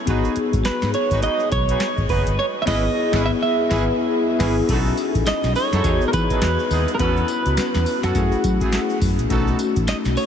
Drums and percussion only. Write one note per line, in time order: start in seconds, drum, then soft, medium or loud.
0.07 kick loud
0.07 closed hi-hat medium
0.07 shaker medium
0.25 shaker soft
0.36 closed hi-hat medium
0.53 kick loud
0.53 closed hi-hat medium
0.53 shaker medium
0.65 snare loud
0.65 clap medium
0.65 closed hi-hat medium
0.65 shaker medium
0.82 snare medium
0.82 shaker medium
0.94 closed hi-hat medium
1.11 kick medium
1.11 closed hi-hat soft
1.11 shaker medium
1.22 closed hi-hat medium
1.22 shaker medium
1.40 shaker soft
1.52 kick loud
1.52 closed hi-hat medium
1.69 closed hi-hat medium
1.69 shaker soft
1.80 snare loud
1.80 clap medium
1.80 closed hi-hat medium
1.80 shaker medium
1.97 kick medium
1.97 shaker soft
2.09 kick loud
2.09 open hi-hat medium
2.26 closed hi-hat medium
2.26 shaker soft
2.67 kick loud
2.67 snare loud
2.67 crash medium
3.13 kick loud
3.13 snare loud
3.71 kick loud
3.71 snare loud
4.40 kick loud
4.40 snare loud
4.40 crash medium
4.69 kick loud
4.69 closed hi-hat medium
4.69 crash loud
4.69 shaker medium
4.86 shaker soft
4.97 closed hi-hat medium
4.97 tambourine medium
5.15 kick loud
5.15 closed hi-hat medium
5.15 shaker medium
5.26 snare loud
5.26 clap medium
5.26 closed hi-hat medium
5.26 tambourine medium
5.26 shaker medium
5.43 snare medium
5.43 shaker medium
5.56 open hi-hat medium
5.56 tambourine medium
5.73 snare medium
5.73 closed hi-hat medium
5.73 shaker medium
5.84 kick loud
5.84 closed hi-hat medium
5.84 tambourine medium
5.84 shaker medium
6.01 shaker medium
6.13 kick loud
6.13 closed hi-hat medium
6.13 tambourine medium
6.30 kick loud
6.30 closed hi-hat medium
6.30 shaker soft
6.42 snare loud
6.42 clap medium
6.42 closed hi-hat medium
6.42 tambourine medium
6.42 shaker medium
6.59 shaker soft
6.71 open hi-hat medium
6.71 tambourine medium
6.88 closed hi-hat medium
6.88 shaker medium
6.99 kick loud
6.99 closed hi-hat medium
6.99 shaker medium
7.17 shaker medium
7.28 closed hi-hat medium
7.28 tambourine medium
7.46 closed hi-hat medium
7.46 shaker medium
7.57 snare loud
7.57 clap medium
7.57 closed hi-hat medium
7.57 tambourine medium
7.57 shaker medium
7.74 snare medium
7.74 shaker medium
7.86 open hi-hat medium
7.86 tambourine medium
8.03 snare medium
8.03 closed hi-hat medium
8.03 shaker medium
8.15 kick loud
8.15 closed hi-hat medium
8.15 tambourine medium
8.15 shaker medium
8.32 shaker medium
8.44 kick loud
8.44 closed hi-hat medium
8.44 tambourine medium
8.61 kick loud
8.61 closed hi-hat medium
8.61 shaker soft
8.72 snare loud
8.72 clap medium
8.72 closed hi-hat medium
8.72 tambourine loud
8.72 shaker medium
8.90 shaker medium
9.01 kick loud
9.01 open hi-hat medium
9.01 tambourine medium
9.19 closed hi-hat medium
9.19 shaker soft
9.30 kick loud
9.30 closed hi-hat medium
9.30 shaker medium
9.47 shaker medium
9.59 closed hi-hat medium
9.59 tambourine medium
9.76 kick loud
9.76 closed hi-hat medium
9.76 shaker medium
9.88 snare loud
9.88 clap medium
9.88 closed hi-hat medium
9.88 tambourine medium
9.88 shaker medium
10.05 snare medium
10.05 shaker medium
10.17 open hi-hat medium
10.17 tambourine medium